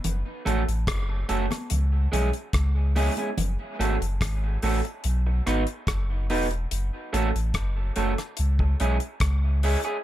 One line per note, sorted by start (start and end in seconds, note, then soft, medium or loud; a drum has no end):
0.04 0.23 F#1 loud
0.04 closed hi-hat loud
0.04 low conga medium
0.45 0.65 A1 medium
0.45 0.62 A3 medium
0.45 0.62 C#4 medium
0.45 0.62 F#4 medium
0.45 0.62 A4 medium
0.45 closed hi-hat medium
0.45 low conga medium
0.68 0.85 A1 medium
0.68 closed hi-hat medium
0.87 1.24 F#1 medium
0.87 kick loud
0.87 cross-stick loud
0.87 closed hi-hat medium
1.29 1.48 F#1 loud
1.29 1.45 A3 medium
1.29 1.45 C#4 medium
1.29 1.45 F#4 medium
1.29 1.45 A4 medium
1.29 closed hi-hat medium
1.51 muted clean electric guitar stroke soft
1.51 cross-stick medium
1.51 closed hi-hat medium
1.51 high conga medium
1.70 2.07 C#2 medium
1.70 closed hi-hat loud
1.70 low conga medium
2.12 2.32 B1 medium
2.12 2.28 G#3 medium
2.12 2.29 C#4 medium
2.12 2.29 E4 medium
2.12 2.29 G#4 medium
2.12 closed hi-hat medium
2.12 low conga medium
2.33 closed hi-hat soft
2.53 3.09 C#2 medium
2.53 kick loud
2.53 cross-stick loud
2.53 closed hi-hat medium
2.96 3.12 G#3 medium
2.96 3.12 C#4 loud
2.96 3.12 E4 loud
2.96 3.13 G#4 loud
2.96 open hi-hat medium
2.96 high conga medium
3.17 3.30 G#3 soft
3.17 3.30 C#4 medium
3.17 3.29 E4 medium
3.17 3.29 G#4 medium
3.17 closed hi-hat soft
3.17 high conga medium
3.38 3.57 F#1 loud
3.38 closed hi-hat loud
3.38 low conga medium
3.79 3.98 G#1 medium
3.79 3.95 A3 medium
3.79 3.96 C#4 medium
3.79 3.96 F#4 loud
3.79 3.96 A4 medium
3.79 closed hi-hat medium
4.02 4.19 F#1 medium
4.02 closed hi-hat medium
4.21 4.58 G#1 loud
4.21 kick loud
4.21 cross-stick medium
4.21 closed hi-hat medium
4.62 4.82 A1 loud
4.62 4.79 A3 medium
4.62 4.79 C#4 medium
4.62 4.79 F#4 medium
4.62 4.80 A4 medium
4.62 open hi-hat medium
4.84 muted clean electric guitar stroke soft
4.84 closed hi-hat soft
5.04 5.41 B1 loud
5.04 closed hi-hat medium
5.27 muted clean electric guitar stroke soft
5.46 5.65 G#1 medium
5.46 5.62 B3 medium
5.46 5.63 D#4 medium
5.46 5.63 F#4 medium
5.46 5.63 B4 medium
5.46 cross-stick medium
5.46 closed hi-hat medium
5.67 closed hi-hat soft
5.87 6.31 F#1 loud
5.87 kick medium
5.87 cross-stick medium
5.87 closed hi-hat medium
6.30 6.66 E1 medium
6.30 6.46 B3 medium
6.30 6.46 D#4 medium
6.30 6.46 F#4 loud
6.30 6.46 B4 loud
6.30 open hi-hat medium
6.51 muted clean electric guitar stroke soft
6.51 closed hi-hat soft
6.71 6.90 F#1 loud
6.71 closed hi-hat loud
7.13 7.32 A1 medium
7.13 7.29 A3 loud
7.13 7.29 C#4 loud
7.13 7.29 F#4 loud
7.13 7.29 A4 loud
7.13 closed hi-hat medium
7.35 7.52 A1 medium
7.35 closed hi-hat medium
7.54 7.91 F#1 loud
7.54 kick medium
7.54 cross-stick loud
7.54 closed hi-hat medium
7.96 8.15 F#1 loud
7.96 8.12 A3 medium
7.96 8.12 C#4 medium
7.96 8.13 F#4 medium
7.96 8.13 A4 medium
7.96 closed hi-hat medium
8.18 muted clean electric guitar stroke medium
8.18 cross-stick medium
8.18 closed hi-hat soft
8.37 8.75 C#2 loud
8.37 closed hi-hat loud
8.59 muted clean electric guitar stroke medium
8.59 kick medium
8.80 8.99 B1 medium
8.80 8.96 G#3 medium
8.80 8.96 C#4 medium
8.80 8.96 E4 medium
8.80 8.96 G#4 medium
8.80 closed hi-hat medium
9.00 closed hi-hat medium
9.20 9.76 C#2 medium
9.20 kick loud
9.20 cross-stick loud
9.20 closed hi-hat medium
9.63 9.79 G#3 medium
9.63 9.79 C#4 loud
9.63 9.80 E4 loud
9.63 9.80 G#4 medium
9.63 open hi-hat medium
9.84 9.97 G#3 medium
9.84 9.97 C#4 soft
9.84 9.97 E4 medium
9.84 9.96 G#4 medium
9.84 closed hi-hat soft